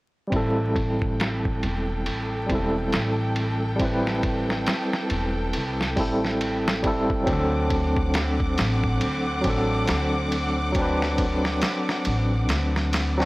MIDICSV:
0, 0, Header, 1, 5, 480
1, 0, Start_track
1, 0, Tempo, 869565
1, 179, Time_signature, 4, 2, 24, 8
1, 7315, End_track
2, 0, Start_track
2, 0, Title_t, "Violin section"
2, 0, Program_c, 0, 48
2, 180, Note_on_c, 0, 69, 73
2, 181, Note_on_c, 0, 79, 70
2, 3998, Note_off_c, 0, 69, 0
2, 3998, Note_off_c, 0, 79, 0
2, 4014, Note_on_c, 0, 60, 73
2, 4014, Note_on_c, 0, 78, 71
2, 4014, Note_on_c, 0, 86, 85
2, 7315, Note_off_c, 0, 60, 0
2, 7315, Note_off_c, 0, 78, 0
2, 7315, Note_off_c, 0, 86, 0
2, 7315, End_track
3, 0, Start_track
3, 0, Title_t, "Tine electric piano"
3, 0, Program_c, 1, 4
3, 151, Note_on_c, 1, 55, 82
3, 165, Note_on_c, 1, 60, 69
3, 183, Note_on_c, 1, 64, 74
3, 200, Note_on_c, 1, 69, 90
3, 272, Control_c, 1, 64, 127
3, 1342, Note_off_c, 1, 55, 0
3, 1349, Note_off_c, 1, 60, 0
3, 1358, Note_off_c, 1, 64, 0
3, 1358, Note_on_c, 1, 55, 70
3, 1366, Note_off_c, 1, 69, 0
3, 1373, Note_on_c, 1, 60, 59
3, 1391, Note_on_c, 1, 64, 61
3, 1406, Note_on_c, 1, 69, 75
3, 2066, Note_off_c, 1, 55, 0
3, 2073, Note_off_c, 1, 60, 0
3, 2074, Note_on_c, 1, 55, 79
3, 2082, Note_off_c, 1, 64, 0
3, 2090, Note_off_c, 1, 69, 0
3, 2091, Note_on_c, 1, 60, 67
3, 2108, Note_on_c, 1, 64, 70
3, 2123, Note_on_c, 1, 71, 82
3, 3263, Note_off_c, 1, 55, 0
3, 3272, Note_off_c, 1, 60, 0
3, 3280, Note_off_c, 1, 64, 0
3, 3288, Note_off_c, 1, 71, 0
3, 3290, Note_on_c, 1, 55, 72
3, 3297, Note_on_c, 1, 60, 66
3, 3308, Note_on_c, 1, 64, 70
3, 3314, Note_on_c, 1, 69, 82
3, 3751, Note_off_c, 1, 55, 0
3, 3755, Note_off_c, 1, 60, 0
3, 3760, Note_off_c, 1, 64, 0
3, 3764, Note_off_c, 1, 69, 0
3, 3768, Note_on_c, 1, 55, 74
3, 3778, Note_on_c, 1, 60, 68
3, 3787, Note_on_c, 1, 64, 70
3, 3794, Note_on_c, 1, 69, 85
3, 3990, Note_off_c, 1, 55, 0
3, 3994, Note_on_c, 1, 54, 84
3, 3996, Note_off_c, 1, 60, 0
3, 4000, Note_off_c, 1, 64, 0
3, 4003, Note_off_c, 1, 69, 0
3, 4007, Note_on_c, 1, 60, 77
3, 4026, Control_c, 1, 64, 0
3, 4027, Note_on_c, 1, 62, 77
3, 4045, Note_on_c, 1, 69, 91
3, 4137, Control_c, 1, 64, 127
3, 5183, Note_off_c, 1, 54, 0
3, 5190, Note_off_c, 1, 60, 0
3, 5195, Note_on_c, 1, 54, 72
3, 5200, Note_off_c, 1, 62, 0
3, 5209, Note_off_c, 1, 69, 0
3, 5210, Note_on_c, 1, 60, 69
3, 5227, Note_on_c, 1, 62, 66
3, 5242, Note_on_c, 1, 69, 83
3, 5904, Note_off_c, 1, 54, 0
3, 5912, Note_off_c, 1, 60, 0
3, 5918, Note_on_c, 1, 54, 82
3, 5920, Note_off_c, 1, 62, 0
3, 5928, Note_off_c, 1, 69, 0
3, 5938, Note_on_c, 1, 60, 71
3, 5953, Note_on_c, 1, 62, 75
3, 5970, Note_on_c, 1, 71, 87
3, 7106, Note_off_c, 1, 54, 0
3, 7116, Note_off_c, 1, 60, 0
3, 7123, Note_off_c, 1, 62, 0
3, 7132, Note_off_c, 1, 71, 0
3, 7272, Note_on_c, 1, 54, 94
3, 7283, Note_on_c, 1, 60, 85
3, 7289, Note_on_c, 1, 62, 88
3, 7296, Note_on_c, 1, 66, 102
3, 7315, Note_off_c, 1, 54, 0
3, 7315, Note_off_c, 1, 60, 0
3, 7315, Note_off_c, 1, 62, 0
3, 7315, Note_off_c, 1, 66, 0
3, 7315, End_track
4, 0, Start_track
4, 0, Title_t, "Upright bass"
4, 0, Program_c, 2, 32
4, 178, Note_on_c, 2, 33, 80
4, 880, Note_off_c, 2, 33, 0
4, 904, Note_on_c, 2, 28, 86
4, 1118, Note_off_c, 2, 28, 0
4, 1142, Note_on_c, 2, 33, 63
4, 1357, Note_off_c, 2, 33, 0
4, 1380, Note_on_c, 2, 28, 89
4, 1596, Note_off_c, 2, 28, 0
4, 1624, Note_on_c, 2, 33, 84
4, 2563, Note_off_c, 2, 33, 0
4, 2821, Note_on_c, 2, 28, 86
4, 3037, Note_off_c, 2, 28, 0
4, 3063, Note_on_c, 2, 36, 64
4, 3296, Note_off_c, 2, 36, 0
4, 3296, Note_on_c, 2, 33, 84
4, 3999, Note_off_c, 2, 33, 0
4, 4016, Note_on_c, 2, 38, 85
4, 4719, Note_off_c, 2, 38, 0
4, 4744, Note_on_c, 2, 33, 87
4, 4958, Note_off_c, 2, 33, 0
4, 4981, Note_on_c, 2, 38, 66
4, 5197, Note_off_c, 2, 38, 0
4, 5214, Note_on_c, 2, 33, 94
4, 5433, Note_off_c, 2, 33, 0
4, 5461, Note_on_c, 2, 38, 92
4, 6402, Note_off_c, 2, 38, 0
4, 6662, Note_on_c, 2, 33, 90
4, 6903, Note_off_c, 2, 33, 0
4, 6903, Note_on_c, 2, 38, 88
4, 7315, Note_off_c, 2, 38, 0
4, 7315, End_track
5, 0, Start_track
5, 0, Title_t, "Drums"
5, 177, Note_on_c, 9, 36, 88
5, 178, Note_on_c, 9, 51, 74
5, 232, Note_off_c, 9, 36, 0
5, 233, Note_off_c, 9, 51, 0
5, 418, Note_on_c, 9, 36, 83
5, 420, Note_on_c, 9, 51, 59
5, 473, Note_off_c, 9, 36, 0
5, 475, Note_off_c, 9, 51, 0
5, 562, Note_on_c, 9, 36, 80
5, 617, Note_off_c, 9, 36, 0
5, 662, Note_on_c, 9, 51, 76
5, 668, Note_on_c, 9, 38, 96
5, 717, Note_off_c, 9, 51, 0
5, 724, Note_off_c, 9, 38, 0
5, 802, Note_on_c, 9, 36, 82
5, 857, Note_off_c, 9, 36, 0
5, 899, Note_on_c, 9, 51, 61
5, 955, Note_off_c, 9, 51, 0
5, 1137, Note_on_c, 9, 51, 74
5, 1193, Note_off_c, 9, 51, 0
5, 1377, Note_on_c, 9, 36, 75
5, 1378, Note_on_c, 9, 51, 60
5, 1433, Note_off_c, 9, 36, 0
5, 1433, Note_off_c, 9, 51, 0
5, 1615, Note_on_c, 9, 51, 70
5, 1621, Note_on_c, 9, 38, 96
5, 1670, Note_off_c, 9, 51, 0
5, 1676, Note_off_c, 9, 38, 0
5, 1854, Note_on_c, 9, 51, 59
5, 1909, Note_off_c, 9, 51, 0
5, 2095, Note_on_c, 9, 51, 74
5, 2096, Note_on_c, 9, 36, 92
5, 2150, Note_off_c, 9, 51, 0
5, 2152, Note_off_c, 9, 36, 0
5, 2247, Note_on_c, 9, 38, 48
5, 2302, Note_off_c, 9, 38, 0
5, 2336, Note_on_c, 9, 51, 59
5, 2337, Note_on_c, 9, 36, 84
5, 2391, Note_off_c, 9, 51, 0
5, 2392, Note_off_c, 9, 36, 0
5, 2485, Note_on_c, 9, 38, 43
5, 2540, Note_off_c, 9, 38, 0
5, 2575, Note_on_c, 9, 51, 74
5, 2582, Note_on_c, 9, 38, 100
5, 2630, Note_off_c, 9, 51, 0
5, 2637, Note_off_c, 9, 38, 0
5, 2724, Note_on_c, 9, 38, 46
5, 2779, Note_off_c, 9, 38, 0
5, 2814, Note_on_c, 9, 51, 61
5, 2870, Note_off_c, 9, 51, 0
5, 3054, Note_on_c, 9, 51, 72
5, 3109, Note_off_c, 9, 51, 0
5, 3206, Note_on_c, 9, 38, 42
5, 3261, Note_off_c, 9, 38, 0
5, 3294, Note_on_c, 9, 46, 64
5, 3295, Note_on_c, 9, 36, 79
5, 3350, Note_off_c, 9, 46, 0
5, 3351, Note_off_c, 9, 36, 0
5, 3448, Note_on_c, 9, 38, 34
5, 3503, Note_off_c, 9, 38, 0
5, 3538, Note_on_c, 9, 51, 77
5, 3593, Note_off_c, 9, 51, 0
5, 3686, Note_on_c, 9, 38, 102
5, 3741, Note_off_c, 9, 38, 0
5, 3775, Note_on_c, 9, 36, 87
5, 3775, Note_on_c, 9, 51, 59
5, 3830, Note_off_c, 9, 36, 0
5, 3830, Note_off_c, 9, 51, 0
5, 3918, Note_on_c, 9, 36, 87
5, 3973, Note_off_c, 9, 36, 0
5, 4013, Note_on_c, 9, 51, 75
5, 4014, Note_on_c, 9, 36, 96
5, 4068, Note_off_c, 9, 51, 0
5, 4069, Note_off_c, 9, 36, 0
5, 4252, Note_on_c, 9, 51, 60
5, 4254, Note_on_c, 9, 36, 85
5, 4308, Note_off_c, 9, 51, 0
5, 4309, Note_off_c, 9, 36, 0
5, 4397, Note_on_c, 9, 36, 90
5, 4452, Note_off_c, 9, 36, 0
5, 4492, Note_on_c, 9, 51, 79
5, 4499, Note_on_c, 9, 38, 108
5, 4548, Note_off_c, 9, 51, 0
5, 4554, Note_off_c, 9, 38, 0
5, 4637, Note_on_c, 9, 36, 86
5, 4693, Note_off_c, 9, 36, 0
5, 4734, Note_on_c, 9, 51, 72
5, 4741, Note_on_c, 9, 38, 94
5, 4790, Note_off_c, 9, 51, 0
5, 4796, Note_off_c, 9, 38, 0
5, 4877, Note_on_c, 9, 36, 75
5, 4933, Note_off_c, 9, 36, 0
5, 4973, Note_on_c, 9, 51, 79
5, 5028, Note_off_c, 9, 51, 0
5, 5211, Note_on_c, 9, 51, 64
5, 5213, Note_on_c, 9, 36, 83
5, 5266, Note_off_c, 9, 51, 0
5, 5268, Note_off_c, 9, 36, 0
5, 5451, Note_on_c, 9, 51, 78
5, 5458, Note_on_c, 9, 38, 99
5, 5506, Note_off_c, 9, 51, 0
5, 5513, Note_off_c, 9, 38, 0
5, 5696, Note_on_c, 9, 51, 63
5, 5752, Note_off_c, 9, 51, 0
5, 5933, Note_on_c, 9, 36, 102
5, 5933, Note_on_c, 9, 51, 73
5, 5988, Note_off_c, 9, 36, 0
5, 5988, Note_off_c, 9, 51, 0
5, 6084, Note_on_c, 9, 38, 48
5, 6140, Note_off_c, 9, 38, 0
5, 6172, Note_on_c, 9, 51, 64
5, 6173, Note_on_c, 9, 36, 89
5, 6227, Note_off_c, 9, 51, 0
5, 6228, Note_off_c, 9, 36, 0
5, 6320, Note_on_c, 9, 38, 45
5, 6376, Note_off_c, 9, 38, 0
5, 6412, Note_on_c, 9, 51, 79
5, 6418, Note_on_c, 9, 38, 99
5, 6467, Note_off_c, 9, 51, 0
5, 6474, Note_off_c, 9, 38, 0
5, 6564, Note_on_c, 9, 38, 46
5, 6619, Note_off_c, 9, 38, 0
5, 6651, Note_on_c, 9, 51, 63
5, 6707, Note_off_c, 9, 51, 0
5, 6893, Note_on_c, 9, 51, 72
5, 6900, Note_on_c, 9, 38, 89
5, 6948, Note_off_c, 9, 51, 0
5, 6955, Note_off_c, 9, 38, 0
5, 7044, Note_on_c, 9, 38, 44
5, 7100, Note_off_c, 9, 38, 0
5, 7137, Note_on_c, 9, 51, 73
5, 7143, Note_on_c, 9, 38, 89
5, 7192, Note_off_c, 9, 51, 0
5, 7199, Note_off_c, 9, 38, 0
5, 7288, Note_on_c, 9, 38, 41
5, 7315, Note_off_c, 9, 38, 0
5, 7315, End_track
0, 0, End_of_file